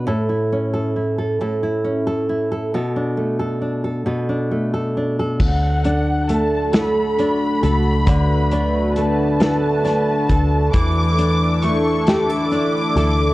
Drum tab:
CC |------|------|x-----|------|
HH |------|------|-xxxxx|xxxxxx|
SD |------|------|---o--|---oo-|
BD |------|------|o-----|o----o|

CC |------|
HH |xxxxxx|
SD |---o--|
BD |o-----|